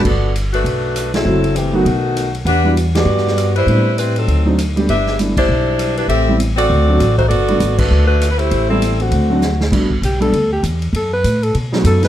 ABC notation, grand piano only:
X:1
M:4/4
L:1/8
Q:"Swing" 1/4=198
K:G
V:1 name="Grand piano"
z8 | [F,A,CEF] z2 [F,A,B,_EF] z4 | z [G,B,DEF] z6 | [G,B,CDE] z4 [F,A,CD_E] z [G,A,B,DG] |
z2 [G,A,B,DE] z4 z | z [G,A,B,CE] z3 [F,A,CDF] z2 | z [G,A,B,DF] z6 | z [G,A,B,CE] z3 [F,A,CDF] z2 |
[G,A,B,DF] z2 [G,A,B,DA] z4 | z4 z [F,A,B,^DF]3 |]